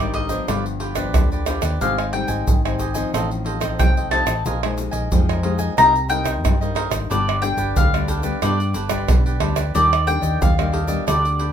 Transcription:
Already playing: G#1 G2 D5
0.00 G3 A#3 D#4 A#4 C5 D#5
0.14 D#4 A#4 C5 D#5, pandeiro, surdo
0.29 F3 B3 D4 A#4 C5 D#5, pandeiro, shaker
0.48 G1 G2 F4 G4 B4 D5, pandeiro, tamborim, shaker, surdo
0.66 muted cavaquinho stroke, pandeiro, shaker
0.80 F4 G4 B4 D5, pandeiro
0.95 F3 B3 D4 G4 B4 D5, pandeiro, tamborim, shaker, surdo
1.14 D2 D3, pandeiro, tamborim, shaker, surdo
1.32 G4 B4 D5, pandeiro, shaker
1.46 F3 B3 D4 F4 G4 B4 D5, pandeiro, tamborim, shaker
1.62 D#2 G4 B4 D5, pandeiro, tamborim, shaker, surdo
1.81 G#1 G#2 G3 C4 D#4 G4 C5 D#5 F5 G#5, pandeiro, shaker, surdo
1.98 C5 D#5 G#5, pandeiro, tamborim, shaker
2.13 G3 C4 D#4 G5, muted cavaquinho stroke, pandeiro
2.28 G#1 C5 D#5 G#5, pandeiro, shaker, surdo
2.47 G#1 D#3, pandeiro, shaker, surdo
2.65 G3 C4 D#4 C5 D#5 G#5, pandeiro, tamborim, shaker
2.79 G4 C5 D#5 G#5, pandeiro, shaker, surdo
2.94 F3 C4 D#4 C5 D#5 G#5, pandeiro, shaker
3.14 A1 A2 F4 A4 C5 D#5, pandeiro, tamborim, shaker, surdo
3.31 muted cavaquinho stroke, pandeiro, shaker
3.45 F4 A4 C5 D#5, pandeiro
3.60 F3 C4 D#4 A4 C5 D#5, pandeiro, tamborim, shaker, surdo
3.79 C2 A2 G5, pandeiro, tamborim, shaker, surdo
3.97 A4 C5 D#5, pandeiro, shaker
4.11 F3 C4 D#4 F4 A4 C5 D#5 A5, pandeiro, tamborim, surdo
4.26 A1 A4 C5 D#5, pandeiro, tamborim, shaker, surdo
4.45 A#1 A#2 F3 G#3 D#4 F4 A#4 D#5 G#5, pandeiro, shaker, surdo
4.63 F3 G#3 D#4 A#4 D#5 G#5, pandeiro, tamborim, shaker
4.78 muted cavaquinho stroke, pandeiro, shaker
4.91 A#1 A#4 D#5 G#5, pandeiro, shaker, surdo
5.12 F2 F3 G#3 D#4, pandeiro, shaker, surdo
5.29 A#4 D#5 G#5, pandeiro, tamborim, shaker
5.43 F3 G#3 D#4 F4 A#4 D#5 G#5, pandeiro, surdo
5.59 A#4 D#5 G#5, pandeiro, shaker
5.77 C2 C3 G3 A#3 D#4 A#4 C5 D#5 A#5, pandeiro, tamborim, shaker, surdo
5.95 muted cavaquinho stroke, pandeiro, shaker
6.08 G3 A#3 D#4 A#4 C5 D#5 G5, pandeiro, shaker
6.24 A#4 C5 D#5, pandeiro, tamborim, shaker, surdo
6.44 G2, pandeiro, tamborim, shaker, surdo
6.61 G3 A#3 D#4 A#4 C5 D#5, pandeiro, shaker
6.75 D#4 A#4 C5 D#5, pandeiro, tamborim, surdo
6.90 G#1 A#4 C5 D#5, pandeiro, tamborim, shaker, surdo
7.10 G1 G2 G3 B3 D4 G4 B4 D5, pandeiro, shaker, surdo
7.28 G4 B4 D5, pandeiro, tamborim, shaker
7.42 G3 B3 D4 G5, muted cavaquinho stroke, pandeiro, shaker
7.57 G1 G4 B4 D5, pandeiro, shaker, surdo
7.76 D2 D3 F5, pandeiro, shaker, surdo
7.94 G3 B3 D4 G4 B4 D5, pandeiro, tamborim, shaker
8.08 D4 G4 B4 D5, pandeiro, shaker, surdo
8.23 G3 B3 D4 G4 B4 D5, pandeiro, shaker
8.42 G2 G3 B3 D4 G4 B4 D5, pandeiro, tamborim, shaker, surdo
8.60 muted cavaquinho stroke, pandeiro, shaker
8.74 G1 D4 G4 B4 D5, pandeiro, shaker
8.89 G3 B3 D4 G4 B4 D5, pandeiro, tamborim, shaker, surdo
9.08 B1 D3, pandeiro, tamborim, shaker, surdo
9.26 G4 B4 D5, pandeiro, shaker
9.40 D2 G3 B3 D4 G4 B4 D5, pandeiro, tamborim
9.56 G4 B4 D5, pandeiro, tamborim, shaker, surdo
9.75 D#2 D#3 G3 A#3 D4 G4 D5 D#5, pandeiro, shaker, surdo
9.92 G4 D5 D#5, pandeiro, tamborim, shaker
10.07 G3 A#3 D4 G5, muted cavaquinho stroke, pandeiro, shaker
10.21 D#2 G4 D5 D#5, pandeiro, shaker, surdo
10.41 D#2 A#2 F5, pandeiro, shaker, surdo
10.58 G3 A#3 D4 G4 D5 D#5, pandeiro, tamborim, shaker
10.72 D4 G4 D5 D#5, pandeiro, surdo
10.87 G3 B3 D4 G4 D5 D#5, pandeiro, shaker
11.07 D2 D3 D4 G4 B4 D5, pandeiro, tamborim, shaker, surdo
11.25 muted cavaquinho stroke, pandeiro, shaker
11.39 D4 G4 B4 D5, pandeiro

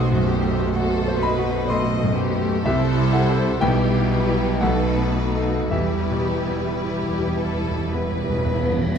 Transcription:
Already playing: B1 B2 A3 F#4 C5 F#5 D#6
0.12 F#2
0.27 G4
0.44 A3
0.74 F#4 A4
1.08 C5
1.21 B4 D#5 B5
1.39 F#4
1.69 A3 D#5 C6
2.03 F#2
2.16 G4
2.35 A3
2.63 C2 C3 G3 E4 G4 A4 C5 E5
2.98 G3
3.13 A4 F#5
3.30 E4 C5
3.60 B1 B2 G3 E4 G4 B4 G5
3.95 B3
4.10 B4
4.28 E4 G4
4.60 B1 A3 D#4 A4 B4 F#5
4.98 B3
5.14 F#4
5.34 D#4 A4
5.70 E1 E2 G3 E4 G4 B4 E5
5.81 E2
5.90 E2
5.99 E2
6.08 E2 B2
6.17 E2
6.25 E2
6.33 E2
6.42 E2
6.47 B3
6.51 E2
6.60 E2
6.68 E2
6.76 E2
6.83 E2 E4 G4
6.94 E2
7.02 E2
7.10 E2
7.19 E2 G4
7.27 E2
7.36 E2 A4
7.45 E2
7.54 E2 E4
7.63 E2
7.71 E2
7.79 E2
7.87 E2
7.93 E2 B3 B4
8.03 E2
8.12 E2
8.21 E2
8.29 E2 B2
8.38 E2
8.46 E2
8.55 E2
8.63 E2 B3
8.71 E2
8.78 E2
8.86 E2

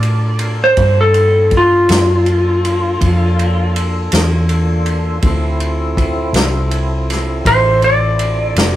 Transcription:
Already playing: A2 D4 F4 A4 A#4 D5
0.03 ride
0.39 ride
0.64 C5
0.77 G2 A#3 D4 F4 A4, kick, ride
1.01 A4
1.14 ride
1.51 kick, ride
1.57 F4
1.89 F#2, snare, ride
2.26 ride
2.65 ride
3.01 F2, kick, ride
3.39 ride
3.76 ride
4.12 E2, snare, ride
4.49 ride
4.86 ride
5.21 D2 C4 E4 F4 A4, kick, ride
5.60 ride
5.97 kick, ride
6.33 C2, snare, ride
6.71 ride
7.10 snare, ride
7.45 A1 C5, kick, ride
7.82 D5, ride
8.19 ride
8.55 F1, snare, ride

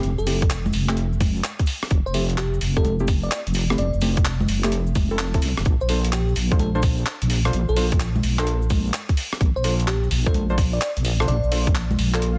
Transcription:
0.03 F1, closed hi-hat, cabasa
0.18 F1 A4, cabasa
0.27 A3 C4 E4 G4, open hi-hat, cabasa
0.41 kick, closed hi-hat, cabasa
0.49 clap, closed hi-hat, cabasa
0.66 high conga, cabasa
0.73 F1, open hi-hat, cabasa
0.89 A3 C4 E4 G4, clap, closed hi-hat, cabasa
0.97 closed hi-hat, cabasa
1.13 cabasa
1.20 kick, open hi-hat, high conga, cabasa
1.36 cabasa
1.44 clap, cabasa
1.59 kick, closed hi-hat, cabasa
1.66 open hi-hat, cabasa
1.83 cross-stick, open hi-hat, cabasa
1.90 F1, kick, closed hi-hat, cabasa
2.06 F1 C5, cabasa
2.14 A3 C4 E4 G4, open hi-hat, cabasa
2.30 closed hi-hat, cabasa
2.38 G4, clap, closed hi-hat, cabasa
2.54 cabasa
2.61 F1, open hi-hat, cabasa
2.76 A3 C4 E4 G4 A4, kick, closed hi-hat, cabasa
2.85 closed hi-hat, high conga, cabasa
2.99 A3 C4 E4 G4, cabasa
3.08 kick, open hi-hat, cabasa
3.23 D5, cabasa
3.31 clap, closed hi-hat, cabasa
3.47 F1, closed hi-hat, cabasa
3.54 open hi-hat, cabasa
3.70 A3 C4 E4 G4, cross-stick, closed hi-hat, cabasa
3.78 F1 D5, closed hi-hat, cabasa
3.94 F1, cabasa
4.01 A3 C4 E4 G4, open hi-hat, cabasa
4.17 kick, closed hi-hat, cabasa
4.25 clap, closed hi-hat, cabasa
4.40 high conga, cabasa
4.48 F1, open hi-hat, cabasa
4.64 A3 C4 E4 G4, clap, cabasa
4.72 closed hi-hat, cabasa
4.87 cabasa
4.95 F1, kick, open hi-hat, high conga, cabasa
5.11 A3 C4 E4 A4, cabasa
5.19 clap, closed hi-hat, cabasa
5.34 A3 C4 E4 A4, kick, closed hi-hat, cabasa
5.42 C2, open hi-hat, cabasa
5.57 F1, cross-stick, open hi-hat, cabasa
5.65 A#1, kick, closed hi-hat, cabasa
5.81 A#1 C5, cabasa
5.89 D4 F4 A4 C5, open hi-hat, cabasa
6.05 closed hi-hat, cabasa
6.12 G4, clap, cabasa
6.29 cabasa
6.36 A#1, open hi-hat, cabasa
6.51 D4 F4 A4 C5, kick, closed hi-hat, cabasa
6.59 A4, closed hi-hat, high conga, cabasa
6.75 D4 F4 A4 C5, cabasa
6.82 kick, open hi-hat, cabasa
6.98 cabasa
7.06 clap, closed hi-hat, cabasa
7.21 A#1, closed hi-hat, cabasa
7.30 open hi-hat, cabasa
7.45 D4 F4 A4 C5, cross-stick, cabasa
7.53 A#1, closed hi-hat, cabasa
7.69 A#1 A4, cabasa
7.76 D4 F4 A4 C5, open hi-hat, cabasa
7.92 kick, closed hi-hat, cabasa
7.99 clap, closed hi-hat, cabasa
8.15 high conga, cabasa
8.23 A#1, open hi-hat, cabasa
8.39 D4 F4 A4 C5, clap, closed hi-hat, cabasa
8.46 closed hi-hat, cabasa
8.62 cabasa
8.70 kick, open hi-hat, high conga, cabasa
8.86 cabasa
8.94 clap, cabasa
9.09 kick, closed hi-hat, cabasa
9.17 open hi-hat, cabasa
9.33 cross-stick, open hi-hat, cabasa
9.41 A#1, kick, closed hi-hat, cabasa
9.56 A#1 C5, cabasa
9.64 D4 F4 A4 C5, open hi-hat, cabasa
9.79 closed hi-hat, cabasa
9.87 G4, clap, closed hi-hat, cabasa
10.03 cabasa
10.11 A#1, open hi-hat, cabasa
10.26 D4 F4 A4 C5, kick, closed hi-hat, cabasa
10.34 closed hi-hat, high conga, cabasa
10.50 D4 F4 A4 C5, cabasa
10.58 kick, open hi-hat, cabasa
10.73 D5, cabasa
10.81 clap, cabasa
10.97 A#1, closed hi-hat, cabasa
11.05 open hi-hat, cabasa
11.20 D4 F4 A4 C5, cross-stick, closed hi-hat, cabasa
11.28 A#1 D5, closed hi-hat, cabasa
11.43 A#1, cabasa
11.52 D4 F4 A4 C5, open hi-hat, cabasa
11.67 kick, closed hi-hat, cabasa
11.75 clap, closed hi-hat, cabasa
11.90 high conga, cabasa
11.98 A#1, open hi-hat, cabasa
12.14 D4 F4 A4 C5, clap, cabasa
12.22 closed hi-hat, swell, cabasa

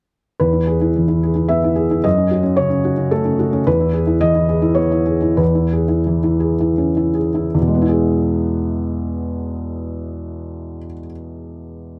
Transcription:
0.40 E2 B4
0.53 E4
0.67 G#4
0.81 E4
0.96 E3
1.08 E4
1.23 G#4
1.36 E4
1.48 B3 E5
1.64 E4
1.76 G#4
1.91 E4
2.04 F#2 D#5
2.18 C#4
2.31 F#4
2.43 C#4
2.57 C#3 C#5
2.70 C#4
2.85 F#4
2.97 C#4
3.11 A3 A4
3.25 C#4
3.39 F#4
3.53 C#4
3.67 E2 B4
3.80 E4
3.93 G#4
4.07 E4
4.21 E3 D#5
4.35 E4
4.49 G#4
4.62 E4
4.75 B3 C#5
4.92 E4
5.06 G#4
5.22 E4
5.37 E2 B4
5.55 E4
5.73 G#4
5.88 E4
6.07 E3
6.23 E4
6.40 G#4
6.61 E4
6.78 C#4
6.97 E4
7.15 G#4
7.35 E4
7.54 E2
7.61 B2
7.68 G#3
7.75 B3
7.82 E4
7.89 G#4

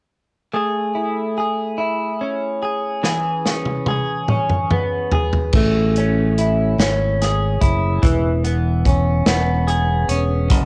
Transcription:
0.54 A3 G#4
0.95 E4
1.38 G#4
1.78 E4
2.21 C#4
2.62 G#4
3.03 E3 G#4, snare
3.45 C#4, snare
3.65 high tom
3.86 G#4, high tom
4.28 C#4, mid tom
4.50 mid tom
4.71 B3, mid tom
5.11 G#4, floor tom
5.33 floor tom
5.53 A1 A3, kick, crash
5.96 C#4, closed hi-hat
6.38 E4, closed hi-hat
6.78 G#1 C#4, snare, closed hi-hat
7.21 G#4, snare, closed hi-hat
7.61 F#1 E4, kick, closed hi-hat
8.03 E1 E3, kick, closed hi-hat
8.44 B3, closed hi-hat
8.85 C#4, kick, closed hi-hat
9.26 E1 B3, snare, closed hi-hat
9.67 G#4, closed hi-hat
10.09 E1 C#4, closed hi-hat
10.50 F#1 F#2, kick, closed hi-hat

